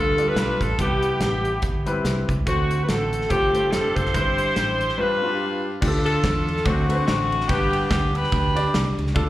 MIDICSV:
0, 0, Header, 1, 6, 480
1, 0, Start_track
1, 0, Tempo, 418702
1, 898, Time_signature, 4, 2, 24, 8
1, 10652, End_track
2, 0, Start_track
2, 0, Title_t, "Alto saxophone"
2, 0, Program_c, 0, 65
2, 0, Note_on_c, 0, 69, 95
2, 322, Note_on_c, 0, 71, 93
2, 339, Note_off_c, 0, 69, 0
2, 712, Note_on_c, 0, 69, 84
2, 729, Note_off_c, 0, 71, 0
2, 908, Note_off_c, 0, 69, 0
2, 916, Note_on_c, 0, 67, 91
2, 1356, Note_off_c, 0, 67, 0
2, 1404, Note_on_c, 0, 67, 77
2, 1841, Note_off_c, 0, 67, 0
2, 2832, Note_on_c, 0, 66, 89
2, 3254, Note_on_c, 0, 71, 64
2, 3272, Note_off_c, 0, 66, 0
2, 3312, Note_on_c, 0, 69, 92
2, 3329, Note_off_c, 0, 71, 0
2, 3787, Note_on_c, 0, 67, 86
2, 3804, Note_off_c, 0, 69, 0
2, 4259, Note_on_c, 0, 69, 90
2, 4276, Note_off_c, 0, 67, 0
2, 4534, Note_on_c, 0, 72, 108
2, 4552, Note_off_c, 0, 69, 0
2, 5707, Note_on_c, 0, 71, 87
2, 5724, Note_off_c, 0, 72, 0
2, 6465, Note_off_c, 0, 71, 0
2, 10652, End_track
3, 0, Start_track
3, 0, Title_t, "Saxophone section"
3, 0, Program_c, 1, 65
3, 0, Note_on_c, 1, 62, 70
3, 0, Note_on_c, 1, 65, 67
3, 0, Note_on_c, 1, 69, 93
3, 307, Note_off_c, 1, 62, 0
3, 310, Note_off_c, 1, 65, 0
3, 315, Note_off_c, 1, 69, 0
3, 318, Note_on_c, 1, 71, 89
3, 321, Note_on_c, 1, 62, 70
3, 323, Note_on_c, 1, 65, 67
3, 694, Note_off_c, 1, 71, 0
3, 699, Note_on_c, 1, 69, 80
3, 861, Note_off_c, 1, 62, 0
3, 863, Note_off_c, 1, 65, 0
3, 902, Note_off_c, 1, 69, 0
3, 904, Note_on_c, 1, 67, 86
3, 909, Note_on_c, 1, 59, 60
3, 910, Note_on_c, 1, 64, 64
3, 1369, Note_off_c, 1, 67, 0
3, 1372, Note_off_c, 1, 64, 0
3, 1377, Note_off_c, 1, 59, 0
3, 1383, Note_on_c, 1, 67, 72
3, 1386, Note_on_c, 1, 64, 52
3, 1391, Note_on_c, 1, 59, 54
3, 1830, Note_off_c, 1, 67, 0
3, 2301, Note_off_c, 1, 64, 0
3, 2304, Note_off_c, 1, 59, 0
3, 2834, Note_on_c, 1, 66, 86
3, 2838, Note_on_c, 1, 57, 64
3, 2839, Note_on_c, 1, 60, 63
3, 3279, Note_off_c, 1, 66, 0
3, 3298, Note_off_c, 1, 60, 0
3, 3306, Note_on_c, 1, 69, 87
3, 3311, Note_on_c, 1, 60, 64
3, 3314, Note_on_c, 1, 66, 64
3, 3750, Note_off_c, 1, 57, 0
3, 3758, Note_off_c, 1, 60, 0
3, 3759, Note_off_c, 1, 66, 0
3, 3789, Note_off_c, 1, 69, 0
3, 3792, Note_on_c, 1, 67, 91
3, 3796, Note_on_c, 1, 60, 66
3, 3800, Note_on_c, 1, 62, 69
3, 4239, Note_off_c, 1, 67, 0
3, 4264, Note_off_c, 1, 60, 0
3, 4270, Note_on_c, 1, 69, 91
3, 4276, Note_on_c, 1, 65, 65
3, 4278, Note_on_c, 1, 60, 60
3, 4712, Note_off_c, 1, 62, 0
3, 4721, Note_off_c, 1, 65, 0
3, 4722, Note_off_c, 1, 60, 0
3, 4752, Note_off_c, 1, 69, 0
3, 4753, Note_on_c, 1, 72, 108
3, 4756, Note_on_c, 1, 67, 80
3, 4760, Note_on_c, 1, 64, 76
3, 5670, Note_off_c, 1, 67, 0
3, 5672, Note_off_c, 1, 64, 0
3, 5714, Note_off_c, 1, 72, 0
3, 5718, Note_on_c, 1, 62, 64
3, 5720, Note_on_c, 1, 65, 66
3, 5723, Note_on_c, 1, 71, 92
3, 6473, Note_off_c, 1, 71, 0
3, 6630, Note_off_c, 1, 62, 0
3, 6631, Note_off_c, 1, 65, 0
3, 6943, Note_on_c, 1, 69, 94
3, 6948, Note_on_c, 1, 62, 67
3, 6948, Note_on_c, 1, 65, 73
3, 7583, Note_off_c, 1, 69, 0
3, 7586, Note_off_c, 1, 62, 0
3, 7586, Note_off_c, 1, 65, 0
3, 7620, Note_on_c, 1, 66, 89
3, 7637, Note_on_c, 1, 57, 67
3, 7645, Note_on_c, 1, 60, 69
3, 8084, Note_off_c, 1, 66, 0
3, 8098, Note_on_c, 1, 66, 91
3, 8106, Note_off_c, 1, 57, 0
3, 8107, Note_off_c, 1, 60, 0
3, 8119, Note_on_c, 1, 57, 62
3, 8121, Note_on_c, 1, 60, 60
3, 8548, Note_off_c, 1, 66, 0
3, 8559, Note_off_c, 1, 57, 0
3, 8560, Note_off_c, 1, 60, 0
3, 8570, Note_on_c, 1, 67, 106
3, 8593, Note_on_c, 1, 59, 79
3, 8593, Note_on_c, 1, 62, 74
3, 9032, Note_off_c, 1, 67, 0
3, 9046, Note_on_c, 1, 67, 100
3, 9309, Note_off_c, 1, 67, 0
3, 9325, Note_on_c, 1, 71, 104
3, 9328, Note_off_c, 1, 62, 0
3, 9342, Note_on_c, 1, 62, 76
3, 9344, Note_on_c, 1, 67, 74
3, 9500, Note_off_c, 1, 59, 0
3, 10013, Note_off_c, 1, 71, 0
3, 10248, Note_off_c, 1, 62, 0
3, 10250, Note_off_c, 1, 67, 0
3, 10652, End_track
4, 0, Start_track
4, 0, Title_t, "Grand piano"
4, 0, Program_c, 2, 0
4, 0, Note_on_c, 2, 43, 59
4, 193, Note_on_c, 2, 55, 71
4, 198, Note_on_c, 2, 62, 61
4, 206, Note_on_c, 2, 65, 61
4, 210, Note_on_c, 2, 74, 74
4, 644, Note_off_c, 2, 43, 0
4, 702, Note_off_c, 2, 55, 0
4, 704, Note_off_c, 2, 62, 0
4, 708, Note_off_c, 2, 65, 0
4, 710, Note_off_c, 2, 74, 0
4, 901, Note_on_c, 2, 55, 66
4, 905, Note_on_c, 2, 59, 56
4, 908, Note_on_c, 2, 48, 57
4, 912, Note_on_c, 2, 64, 63
4, 919, Note_on_c, 2, 71, 72
4, 1598, Note_off_c, 2, 55, 0
4, 1600, Note_off_c, 2, 59, 0
4, 1604, Note_off_c, 2, 64, 0
4, 1607, Note_off_c, 2, 71, 0
4, 1615, Note_off_c, 2, 48, 0
4, 2131, Note_on_c, 2, 55, 80
4, 2137, Note_on_c, 2, 60, 79
4, 2143, Note_on_c, 2, 64, 77
4, 2148, Note_on_c, 2, 71, 94
4, 2635, Note_off_c, 2, 55, 0
4, 2638, Note_off_c, 2, 60, 0
4, 2641, Note_off_c, 2, 64, 0
4, 2644, Note_off_c, 2, 71, 0
4, 2819, Note_on_c, 2, 57, 65
4, 2827, Note_on_c, 2, 62, 61
4, 2830, Note_on_c, 2, 50, 54
4, 2835, Note_on_c, 2, 66, 61
4, 2840, Note_on_c, 2, 72, 71
4, 3521, Note_off_c, 2, 57, 0
4, 3525, Note_off_c, 2, 62, 0
4, 3529, Note_off_c, 2, 66, 0
4, 3532, Note_off_c, 2, 72, 0
4, 3540, Note_off_c, 2, 50, 0
4, 3779, Note_on_c, 2, 57, 74
4, 3783, Note_on_c, 2, 65, 67
4, 3786, Note_on_c, 2, 43, 60
4, 3791, Note_on_c, 2, 67, 67
4, 3794, Note_on_c, 2, 72, 82
4, 4005, Note_off_c, 2, 57, 0
4, 4007, Note_off_c, 2, 65, 0
4, 4011, Note_off_c, 2, 67, 0
4, 4012, Note_off_c, 2, 72, 0
4, 4051, Note_on_c, 2, 57, 72
4, 4060, Note_on_c, 2, 65, 68
4, 4066, Note_on_c, 2, 67, 63
4, 4074, Note_on_c, 2, 72, 80
4, 4499, Note_off_c, 2, 43, 0
4, 4558, Note_off_c, 2, 57, 0
4, 4562, Note_off_c, 2, 65, 0
4, 4566, Note_off_c, 2, 67, 0
4, 4569, Note_off_c, 2, 72, 0
4, 4744, Note_on_c, 2, 55, 65
4, 4747, Note_on_c, 2, 60, 61
4, 4748, Note_on_c, 2, 43, 61
4, 4756, Note_on_c, 2, 64, 64
4, 4760, Note_on_c, 2, 71, 59
4, 4819, Note_on_c, 2, 72, 76
4, 4822, Note_off_c, 2, 71, 0
4, 5445, Note_off_c, 2, 55, 0
4, 5447, Note_off_c, 2, 60, 0
4, 5451, Note_off_c, 2, 64, 0
4, 5460, Note_off_c, 2, 43, 0
4, 5482, Note_off_c, 2, 72, 0
4, 5698, Note_on_c, 2, 55, 70
4, 5701, Note_on_c, 2, 62, 64
4, 5706, Note_on_c, 2, 43, 58
4, 5711, Note_on_c, 2, 65, 62
4, 5715, Note_on_c, 2, 71, 76
4, 5926, Note_off_c, 2, 55, 0
4, 5927, Note_off_c, 2, 62, 0
4, 5932, Note_off_c, 2, 65, 0
4, 5934, Note_off_c, 2, 71, 0
4, 5981, Note_on_c, 2, 55, 66
4, 5988, Note_on_c, 2, 62, 63
4, 5993, Note_on_c, 2, 65, 62
4, 5998, Note_on_c, 2, 66, 60
4, 6043, Note_off_c, 2, 66, 0
4, 6061, Note_on_c, 2, 67, 74
4, 6418, Note_off_c, 2, 43, 0
4, 6483, Note_off_c, 2, 55, 0
4, 6487, Note_off_c, 2, 62, 0
4, 6489, Note_off_c, 2, 65, 0
4, 6523, Note_off_c, 2, 67, 0
4, 6663, Note_on_c, 2, 62, 85
4, 6671, Note_on_c, 2, 50, 75
4, 6671, Note_on_c, 2, 65, 75
4, 6682, Note_on_c, 2, 67, 74
4, 6739, Note_on_c, 2, 69, 94
4, 6743, Note_off_c, 2, 67, 0
4, 7363, Note_off_c, 2, 62, 0
4, 7367, Note_off_c, 2, 65, 0
4, 7380, Note_off_c, 2, 50, 0
4, 7400, Note_off_c, 2, 69, 0
4, 7624, Note_on_c, 2, 57, 77
4, 7631, Note_on_c, 2, 60, 72
4, 7636, Note_on_c, 2, 50, 64
4, 7636, Note_on_c, 2, 62, 70
4, 7636, Note_on_c, 2, 66, 70
4, 7642, Note_on_c, 2, 72, 86
4, 7847, Note_off_c, 2, 57, 0
4, 7850, Note_off_c, 2, 60, 0
4, 7852, Note_off_c, 2, 66, 0
4, 7853, Note_off_c, 2, 62, 0
4, 7856, Note_off_c, 2, 72, 0
4, 7891, Note_on_c, 2, 57, 74
4, 7897, Note_on_c, 2, 60, 66
4, 7901, Note_on_c, 2, 62, 66
4, 7902, Note_on_c, 2, 66, 67
4, 7910, Note_on_c, 2, 71, 68
4, 7957, Note_off_c, 2, 71, 0
4, 7967, Note_on_c, 2, 72, 79
4, 8339, Note_off_c, 2, 50, 0
4, 8394, Note_off_c, 2, 57, 0
4, 8397, Note_off_c, 2, 60, 0
4, 8400, Note_off_c, 2, 62, 0
4, 8400, Note_off_c, 2, 66, 0
4, 8432, Note_off_c, 2, 72, 0
4, 8573, Note_on_c, 2, 62, 72
4, 8583, Note_on_c, 2, 43, 65
4, 8583, Note_on_c, 2, 67, 65
4, 8595, Note_on_c, 2, 71, 80
4, 9273, Note_off_c, 2, 62, 0
4, 9277, Note_off_c, 2, 67, 0
4, 9283, Note_off_c, 2, 71, 0
4, 9290, Note_off_c, 2, 43, 0
4, 9802, Note_on_c, 2, 62, 76
4, 9811, Note_on_c, 2, 67, 68
4, 9818, Note_on_c, 2, 74, 87
4, 10304, Note_off_c, 2, 62, 0
4, 10308, Note_off_c, 2, 67, 0
4, 10312, Note_off_c, 2, 74, 0
4, 10481, Note_on_c, 2, 62, 87
4, 10487, Note_on_c, 2, 50, 78
4, 10492, Note_on_c, 2, 65, 79
4, 10500, Note_on_c, 2, 69, 97
4, 10652, Note_off_c, 2, 50, 0
4, 10652, Note_off_c, 2, 62, 0
4, 10652, Note_off_c, 2, 65, 0
4, 10652, Note_off_c, 2, 69, 0
4, 10652, End_track
5, 0, Start_track
5, 0, Title_t, "Fingered electric bass"
5, 0, Program_c, 3, 33
5, 0, Note_on_c, 3, 38, 82
5, 344, Note_off_c, 3, 38, 0
5, 407, Note_on_c, 3, 35, 84
5, 645, Note_off_c, 3, 35, 0
5, 696, Note_on_c, 3, 33, 80
5, 870, Note_off_c, 3, 33, 0
5, 907, Note_on_c, 3, 36, 92
5, 1313, Note_off_c, 3, 36, 0
5, 1378, Note_on_c, 3, 33, 89
5, 1866, Note_on_c, 3, 31, 83
5, 1883, Note_off_c, 3, 33, 0
5, 2274, Note_off_c, 3, 31, 0
5, 2343, Note_on_c, 3, 36, 84
5, 2578, Note_off_c, 3, 36, 0
5, 2624, Note_on_c, 3, 37, 77
5, 2798, Note_off_c, 3, 37, 0
5, 2830, Note_on_c, 3, 38, 91
5, 3238, Note_off_c, 3, 38, 0
5, 3310, Note_on_c, 3, 33, 91
5, 3719, Note_off_c, 3, 33, 0
5, 3789, Note_on_c, 3, 31, 93
5, 4265, Note_off_c, 3, 31, 0
5, 4265, Note_on_c, 3, 29, 86
5, 4501, Note_off_c, 3, 29, 0
5, 4544, Note_on_c, 3, 30, 76
5, 4720, Note_off_c, 3, 30, 0
5, 4755, Note_on_c, 3, 31, 100
5, 5163, Note_off_c, 3, 31, 0
5, 5233, Note_on_c, 3, 33, 83
5, 5642, Note_off_c, 3, 33, 0
5, 6671, Note_on_c, 3, 38, 94
5, 7079, Note_off_c, 3, 38, 0
5, 7148, Note_on_c, 3, 40, 95
5, 7557, Note_off_c, 3, 40, 0
5, 7633, Note_on_c, 3, 38, 103
5, 8039, Note_off_c, 3, 38, 0
5, 8118, Note_on_c, 3, 33, 97
5, 8520, Note_off_c, 3, 33, 0
5, 8591, Note_on_c, 3, 31, 102
5, 8995, Note_off_c, 3, 31, 0
5, 9062, Note_on_c, 3, 38, 92
5, 9469, Note_off_c, 3, 38, 0
5, 9542, Note_on_c, 3, 38, 93
5, 9948, Note_off_c, 3, 38, 0
5, 10022, Note_on_c, 3, 36, 98
5, 10253, Note_off_c, 3, 36, 0
5, 10297, Note_on_c, 3, 37, 82
5, 10469, Note_off_c, 3, 37, 0
5, 10499, Note_on_c, 3, 38, 101
5, 10652, Note_off_c, 3, 38, 0
5, 10652, End_track
6, 0, Start_track
6, 0, Title_t, "Drums"
6, 208, Note_on_c, 9, 42, 80
6, 323, Note_off_c, 9, 42, 0
6, 418, Note_on_c, 9, 38, 99
6, 422, Note_on_c, 9, 42, 86
6, 532, Note_off_c, 9, 38, 0
6, 537, Note_off_c, 9, 42, 0
6, 696, Note_on_c, 9, 36, 78
6, 707, Note_on_c, 9, 42, 60
6, 811, Note_off_c, 9, 36, 0
6, 821, Note_off_c, 9, 42, 0
6, 903, Note_on_c, 9, 36, 98
6, 904, Note_on_c, 9, 42, 87
6, 1018, Note_off_c, 9, 36, 0
6, 1019, Note_off_c, 9, 42, 0
6, 1176, Note_on_c, 9, 42, 64
6, 1290, Note_off_c, 9, 42, 0
6, 1382, Note_on_c, 9, 38, 92
6, 1383, Note_on_c, 9, 42, 91
6, 1497, Note_off_c, 9, 38, 0
6, 1497, Note_off_c, 9, 42, 0
6, 1662, Note_on_c, 9, 42, 58
6, 1776, Note_off_c, 9, 42, 0
6, 1858, Note_on_c, 9, 42, 75
6, 1864, Note_on_c, 9, 36, 96
6, 1972, Note_off_c, 9, 42, 0
6, 1979, Note_off_c, 9, 36, 0
6, 2139, Note_on_c, 9, 42, 79
6, 2254, Note_off_c, 9, 42, 0
6, 2348, Note_on_c, 9, 38, 92
6, 2353, Note_on_c, 9, 42, 86
6, 2463, Note_off_c, 9, 38, 0
6, 2468, Note_off_c, 9, 42, 0
6, 2623, Note_on_c, 9, 36, 80
6, 2634, Note_on_c, 9, 42, 58
6, 2738, Note_off_c, 9, 36, 0
6, 2748, Note_off_c, 9, 42, 0
6, 2829, Note_on_c, 9, 36, 97
6, 2829, Note_on_c, 9, 42, 87
6, 2944, Note_off_c, 9, 36, 0
6, 2944, Note_off_c, 9, 42, 0
6, 3105, Note_on_c, 9, 42, 63
6, 3219, Note_off_c, 9, 42, 0
6, 3309, Note_on_c, 9, 38, 94
6, 3309, Note_on_c, 9, 42, 86
6, 3423, Note_off_c, 9, 38, 0
6, 3424, Note_off_c, 9, 42, 0
6, 3587, Note_on_c, 9, 42, 60
6, 3685, Note_on_c, 9, 38, 32
6, 3702, Note_off_c, 9, 42, 0
6, 3785, Note_on_c, 9, 42, 80
6, 3788, Note_on_c, 9, 36, 95
6, 3800, Note_off_c, 9, 38, 0
6, 3900, Note_off_c, 9, 42, 0
6, 3903, Note_off_c, 9, 36, 0
6, 4065, Note_on_c, 9, 42, 80
6, 4180, Note_off_c, 9, 42, 0
6, 4270, Note_on_c, 9, 38, 94
6, 4275, Note_on_c, 9, 42, 88
6, 4385, Note_off_c, 9, 38, 0
6, 4390, Note_off_c, 9, 42, 0
6, 4545, Note_on_c, 9, 36, 77
6, 4555, Note_on_c, 9, 42, 55
6, 4650, Note_on_c, 9, 38, 36
6, 4660, Note_off_c, 9, 36, 0
6, 4670, Note_off_c, 9, 42, 0
6, 4751, Note_on_c, 9, 36, 100
6, 4753, Note_on_c, 9, 42, 87
6, 4764, Note_off_c, 9, 38, 0
6, 4866, Note_off_c, 9, 36, 0
6, 4868, Note_off_c, 9, 42, 0
6, 5026, Note_on_c, 9, 42, 65
6, 5141, Note_off_c, 9, 42, 0
6, 5230, Note_on_c, 9, 38, 87
6, 5230, Note_on_c, 9, 42, 87
6, 5344, Note_off_c, 9, 38, 0
6, 5345, Note_off_c, 9, 42, 0
6, 5511, Note_on_c, 9, 42, 59
6, 5606, Note_on_c, 9, 38, 28
6, 5626, Note_off_c, 9, 42, 0
6, 5721, Note_off_c, 9, 38, 0
6, 6674, Note_on_c, 9, 36, 102
6, 6674, Note_on_c, 9, 49, 99
6, 6789, Note_off_c, 9, 36, 0
6, 6789, Note_off_c, 9, 49, 0
6, 6949, Note_on_c, 9, 51, 57
6, 7064, Note_off_c, 9, 51, 0
6, 7150, Note_on_c, 9, 36, 101
6, 7156, Note_on_c, 9, 38, 99
6, 7157, Note_on_c, 9, 51, 77
6, 7265, Note_off_c, 9, 36, 0
6, 7271, Note_off_c, 9, 38, 0
6, 7272, Note_off_c, 9, 51, 0
6, 7433, Note_on_c, 9, 51, 48
6, 7530, Note_on_c, 9, 38, 32
6, 7548, Note_off_c, 9, 51, 0
6, 7628, Note_on_c, 9, 51, 71
6, 7631, Note_on_c, 9, 36, 112
6, 7644, Note_off_c, 9, 38, 0
6, 7743, Note_off_c, 9, 51, 0
6, 7746, Note_off_c, 9, 36, 0
6, 7907, Note_on_c, 9, 51, 75
6, 8021, Note_off_c, 9, 51, 0
6, 8114, Note_on_c, 9, 38, 106
6, 8118, Note_on_c, 9, 51, 79
6, 8228, Note_off_c, 9, 38, 0
6, 8233, Note_off_c, 9, 51, 0
6, 8394, Note_on_c, 9, 51, 51
6, 8491, Note_on_c, 9, 38, 41
6, 8509, Note_off_c, 9, 51, 0
6, 8590, Note_on_c, 9, 36, 104
6, 8590, Note_on_c, 9, 51, 75
6, 8605, Note_off_c, 9, 38, 0
6, 8705, Note_off_c, 9, 36, 0
6, 8705, Note_off_c, 9, 51, 0
6, 8864, Note_on_c, 9, 51, 58
6, 8978, Note_off_c, 9, 51, 0
6, 9064, Note_on_c, 9, 36, 104
6, 9068, Note_on_c, 9, 38, 102
6, 9069, Note_on_c, 9, 51, 79
6, 9179, Note_off_c, 9, 36, 0
6, 9183, Note_off_c, 9, 38, 0
6, 9184, Note_off_c, 9, 51, 0
6, 9343, Note_on_c, 9, 51, 52
6, 9443, Note_on_c, 9, 38, 33
6, 9457, Note_off_c, 9, 51, 0
6, 9538, Note_on_c, 9, 51, 73
6, 9543, Note_on_c, 9, 36, 104
6, 9558, Note_off_c, 9, 38, 0
6, 9653, Note_off_c, 9, 51, 0
6, 9658, Note_off_c, 9, 36, 0
6, 9818, Note_on_c, 9, 51, 71
6, 9933, Note_off_c, 9, 51, 0
6, 10022, Note_on_c, 9, 38, 106
6, 10027, Note_on_c, 9, 51, 81
6, 10137, Note_off_c, 9, 38, 0
6, 10141, Note_off_c, 9, 51, 0
6, 10301, Note_on_c, 9, 51, 51
6, 10394, Note_on_c, 9, 38, 37
6, 10415, Note_off_c, 9, 51, 0
6, 10496, Note_on_c, 9, 51, 76
6, 10498, Note_on_c, 9, 36, 106
6, 10508, Note_off_c, 9, 38, 0
6, 10610, Note_off_c, 9, 51, 0
6, 10613, Note_off_c, 9, 36, 0
6, 10652, End_track
0, 0, End_of_file